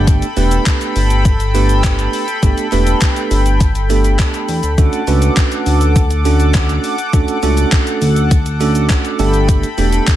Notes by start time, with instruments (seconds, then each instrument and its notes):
Already playing: analog synth bass G1, tine electric piano A3 B3 D4 G4 A4, analog synth pad A4 G5 B5
0.07 kick, closed hi-hat, shaker
0.22 closed hi-hat, shaker
0.37 analog synth bass E1, tine electric piano A3 B3 D4 G4 B4, open hi-hat, shaker
0.51 closed hi-hat, shaker
0.66 kick, clap, closed hi-hat, shaker
0.81 closed hi-hat, shaker
0.96 analog synth bass G1, open hi-hat, shaker
1.10 closed hi-hat, shaker
1.25 kick, closed hi-hat, shaker
1.40 closed hi-hat, shaker
1.54 tine electric piano A3 B3 D4 G4 B4, open hi-hat, shaker
1.69 closed hi-hat, shaker
1.84 kick, clap, closed hi-hat, shaker
1.99 closed hi-hat, shaker
2.13 open hi-hat, shaker
2.28 closed hi-hat, shaker
2.43 analog synth bass G1, tine electric piano A3 B3 D4 G4 A4, kick, closed hi-hat, shaker
2.58 closed hi-hat, shaker
2.72 analog synth bass E1, tine electric piano A3 B3 D4 G4 B4, clap, open hi-hat, shaker
2.87 closed hi-hat, shaker
3.01 kick, clap, closed hi-hat, shaker
3.16 closed hi-hat, shaker
3.31 analog synth bass G1, open hi-hat, shaker
3.46 closed hi-hat, shaker
3.60 kick, closed hi-hat, shaker
3.75 closed hi-hat, shaker
3.90 tine electric piano A3 B3 D4 G4 A4, open hi-hat, shaker
4.04 closed hi-hat, shaker
4.19 kick, clap, closed hi-hat, shaker
4.34 closed hi-hat, shaker
4.49 analog synth bass E2, open hi-hat, shaker
4.63 analog synth bass D2, closed hi-hat, shaker
4.78 analog synth bass D2, tine electric piano A3 C#4 D4 F#4 A4, analog synth pad A4 F#5 D6, kick, closed hi-hat, shaker
4.93 closed hi-hat, shaker
5.07 analog synth bass C#2, tine electric piano A3 C#4 D4 F#4 B4, open hi-hat, shaker
5.22 closed hi-hat, shaker
5.37 kick, clap, closed hi-hat, shaker
5.52 closed hi-hat, shaker
5.66 analog synth bass D2, open hi-hat, shaker
5.81 closed hi-hat, shaker
5.96 kick, closed hi-hat, shaker
6.11 closed hi-hat, shaker
6.25 tine electric piano A3 C#4 D4 F#4 A4, open hi-hat, shaker
6.40 closed hi-hat, shaker
6.54 kick, clap, closed hi-hat, shaker
6.69 closed hi-hat, shaker
6.84 open hi-hat, shaker
6.98 closed hi-hat, shaker
7.13 analog synth bass D2, tine electric piano A3 C#4 D4 F#4 A4, kick, closed hi-hat, shaker
7.28 closed hi-hat, shaker
7.43 analog synth bass C#2, tine electric piano A3 C#4 D4 F#4 A4, open hi-hat, shaker
7.57 closed hi-hat, shaker
7.72 kick, clap, closed hi-hat, shaker
7.87 closed hi-hat, shaker
8.02 analog synth bass D2, open hi-hat, shaker
8.16 closed hi-hat, shaker
8.31 kick, closed hi-hat, shaker
8.46 closed hi-hat, shaker
8.60 tine electric piano A3 C#4 D4 F#4 A4, open hi-hat, shaker
8.75 closed hi-hat, shaker
8.90 kick, clap, closed hi-hat, shaker
9.05 closed hi-hat, shaker
9.19 analog synth bass G1, tine electric piano A3 B3 D4 G4 A4, analog synth pad A4 G5 B5, open hi-hat, shaker
9.34 closed hi-hat, shaker
9.49 kick, closed hi-hat, shaker
9.63 closed hi-hat, shaker
9.78 analog synth bass E1, tine electric piano A3 B3 D4 G4 A4, open hi-hat, shaker
9.93 closed hi-hat, shaker
10.07 kick, clap, closed hi-hat, shaker